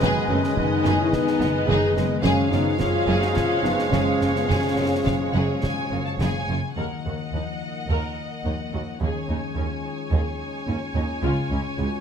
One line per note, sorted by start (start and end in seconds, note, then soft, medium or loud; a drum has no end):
0.00 0.10 F#1 medium
0.00 0.09 F#2 medium
0.00 2.23 F#2 medium
0.00 0.16 D#3 medium
0.00 2.20 D#3 medium
0.00 2.20 G#3 medium
0.00 0.29 G#3 medium
0.00 0.29 B3 soft
0.00 0.28 B3 medium
0.00 0.42 G#4 medium
0.00 0.28 G#4 medium
0.00 0.69 B4 medium
0.00 2.20 B4 medium
0.00 2.23 B4 medium
0.00 0.56 D#5 medium
0.00 2.20 D#5 medium
0.00 0.84 G#5 medium
0.00 1.91 G#5 medium
0.00 0.98 D#6 medium
0.00 concert bass drum medium
0.00 snare medium
0.17 1.68 D#3 medium
0.28 0.38 F#1 medium
0.28 0.36 F#2 medium
0.28 0.37 A3 medium
0.28 1.53 B3 soft
0.28 0.57 C#4 medium
0.28 0.38 D#4 medium
0.44 2.65 G#4 medium
0.44 snare medium
0.55 0.65 F#1 medium
0.55 0.65 F#2 soft
0.55 0.66 B3 soft
0.55 0.99 B3 medium
0.55 0.98 D#4 medium
0.55 1.38 D#5 medium
0.55 concert bass drum medium
0.71 1.25 B4 medium
0.84 0.94 F#1 medium
0.84 0.93 F#2 medium
0.84 1.11 G#4 medium
0.84 1.11 G#5 medium
0.84 snare medium
0.99 1.13 C#4 medium
0.99 1.13 E4 medium
0.99 2.27 D#6 medium
1.13 1.68 B3 medium
1.13 1.68 D#4 medium
1.13 3.06 G#5 medium
1.13 concert bass drum medium
1.13 snare medium
1.26 2.26 B4 medium
1.26 snare medium
1.40 1.49 F#1 medium
1.40 1.48 F#2 medium
1.40 1.48 B3 medium
1.40 2.26 D#5 medium
1.40 snare soft
1.54 1.82 B3 medium
1.67 1.77 F#1 medium
1.67 1.76 F#2 medium
1.67 1.96 D#3 medium
1.67 1.96 D#4 medium
1.67 1.96 G#4 medium
1.67 1.95 G#4 medium
1.67 concert bass drum medium
1.84 2.10 B3 medium
1.96 2.05 F#1 medium
1.96 2.04 F#2 medium
1.96 2.27 D#3 medium
1.96 2.25 G#3 medium
1.96 2.24 B3 medium
1.96 2.05 D#4 medium
1.96 snare medium
2.11 2.27 B3 soft
2.22 2.32 F#1 medium
2.22 2.31 F#2 medium
2.22 4.46 F#2 medium
2.22 6.45 F3 medium
2.22 6.45 G#3 medium
2.22 2.51 C#4 loud
2.22 6.44 G#4 medium
2.22 2.50 G#4 medium
2.22 6.53 C#5 medium
2.22 4.95 F5 medium
2.22 6.44 F5 medium
2.22 concert bass drum medium
2.22 snare medium
2.26 2.53 G#3 medium
2.38 3.90 C#3 soft
2.51 2.61 F#1 medium
2.51 2.60 F#2 medium
2.51 2.79 B3 medium
2.51 3.75 C#4 soft
2.51 2.79 D#4 medium
2.51 2.60 F4 soft
2.51 snare soft
2.67 4.89 G#4 soft
2.78 2.88 F#1 soft
2.78 2.87 F#2 soft
2.78 2.88 C#4 soft
2.78 3.22 C#4 medium
2.78 3.21 F4 medium
2.78 3.62 F5 medium
2.78 concert bass drum medium
2.78 snare medium
3.07 3.16 F#1 medium
3.07 3.15 F#2 medium
3.07 3.34 G#4 medium
3.07 3.34 G#5 medium
3.20 3.36 D#4 medium
3.20 3.34 F#4 medium
3.20 5.48 F6 medium
3.20 snare soft
3.33 3.63 C#4 medium
3.33 3.62 F4 medium
3.33 5.32 G#5 medium
3.33 concert bass drum medium
3.33 snare medium
3.49 5.18 C#5 soft
3.62 3.72 F#1 soft
3.62 3.72 F#2 medium
3.62 3.92 B3 medium
3.62 3.72 C#4 medium
3.62 3.91 D#4 medium
3.62 5.03 F5 soft
3.62 snare soft
3.76 4.04 C#4 soft
3.76 snare medium
3.90 4.01 F#1 medium
3.90 4.00 F#2 medium
3.90 4.33 G#3 medium
3.90 4.33 C#4 medium
3.90 4.18 G#4 medium
3.90 concert bass drum medium
3.90 snare medium
4.19 4.29 F#1 medium
4.19 4.29 F#2 medium
4.19 4.60 C#3 soft
4.19 4.30 F4 medium
4.19 snare medium
4.34 4.40 G#3 medium
4.34 4.49 B3 medium
4.34 4.75 C#4 soft
4.34 snare soft
4.47 4.57 F#1 medium
4.47 6.78 F#2 medium
4.47 4.57 F#2 medium
4.47 6.16 G#3 medium
4.47 6.20 C#4 medium
4.47 4.75 G#4 medium
4.47 concert bass drum medium
4.47 snare medium
4.61 6.19 C#3 soft
4.78 4.86 F#1 soft
4.78 4.86 F#2 soft
4.78 4.86 F4 soft
4.90 6.78 G#4 soft
5.04 5.15 F#1 soft
5.04 5.14 F#2 soft
5.04 5.14 C#4 soft
5.04 5.91 F5 medium
5.04 5.13 F5 medium
5.04 concert bass drum medium
5.04 snare medium
5.19 5.77 C#5 soft
5.33 5.42 F#1 medium
5.33 5.42 F#2 medium
5.33 5.61 G#4 medium
5.33 5.41 F#5 medium
5.33 5.62 G#5 medium
5.49 6.79 F6 soft
5.61 6.04 G#5 medium
5.61 6.79 G#5 medium
5.61 concert bass drum medium
5.61 snare medium
5.78 6.80 C#5 soft
5.91 5.99 F#1 soft
5.91 6.01 F#2 medium
5.91 5.99 C#4 medium
5.91 6.80 F5 soft
6.06 6.32 C#4 soft
6.06 6.12 A5 medium
6.20 6.28 F#1 medium
6.20 6.28 F#2 medium
6.20 6.47 C#3 soft
6.20 6.47 G#4 medium
6.20 6.76 G#5 medium
6.20 concert bass drum medium
6.20 snare medium
6.33 6.61 C#4 soft
6.48 6.56 F#1 soft
6.48 6.56 F#2 soft
6.48 6.79 C#3 soft
6.48 6.58 F4 medium
6.62 6.79 C#4 soft
6.76 6.85 D#2 soft
6.76 6.86 D#2 soft
6.76 8.97 D#3 soft
6.76 9.00 D#3 soft
6.76 8.97 A#3 soft
6.76 7.04 A#4 soft
6.76 8.97 D#5 soft
6.76 8.97 F#5 soft
7.05 7.14 D#2 soft
7.05 7.60 D#4 soft
7.05 7.13 F#4 soft
7.33 7.41 D#2 soft
7.33 7.81 F3 soft
7.33 7.43 D#4 soft
7.62 8.16 D#4 soft
7.89 7.97 D#2 soft
7.89 7.98 D#2 soft
7.89 9.03 A#3 soft
7.89 8.15 A#4 soft
8.17 8.72 D#4 soft
8.44 8.53 D#2 soft
8.44 8.54 D#2 soft
8.44 8.92 F3 soft
8.44 8.52 D#4 soft
8.73 8.81 D#2 soft
8.73 9.28 D#4 soft
8.73 8.81 F#4 soft
9.00 9.09 D#2 soft
9.00 11.25 D#3 soft
9.00 11.21 G#3 soft
9.00 12.01 C#4 soft
9.00 9.28 G#4 soft
9.00 12.01 C#5 soft
9.00 12.01 G#5 soft
9.28 9.36 D#2 soft
9.28 9.84 D#4 soft
9.28 9.38 D#4 soft
9.56 9.64 D#2 soft
9.56 9.65 D#2 soft
9.56 9.66 C#4 soft
9.56 10.04 F4 soft
9.85 10.39 D#4 soft
10.12 10.20 D#2 medium
10.12 12.01 C#4 soft
10.12 10.38 G#4 medium
10.41 10.94 D#4 soft
10.67 10.75 D#2 soft
10.67 10.76 D#2 soft
10.67 10.77 C#4 soft
10.67 11.14 F4 soft
10.95 11.03 D#2 soft
10.95 11.03 D#4 soft
10.95 11.25 D#4 soft
11.22 11.30 C#2 medium
11.22 11.31 C#2 medium
11.22 12.01 C#3 medium
11.22 12.01 G#3 medium
11.22 11.48 F4 medium
11.50 11.58 C#2 soft
11.50 11.60 C#2 soft
11.50 11.59 C#4 soft
11.50 12.01 F4 soft
11.77 11.86 C#2 soft
11.77 11.87 C#2 soft
11.77 11.86 G#3 soft
11.77 12.01 F#4 soft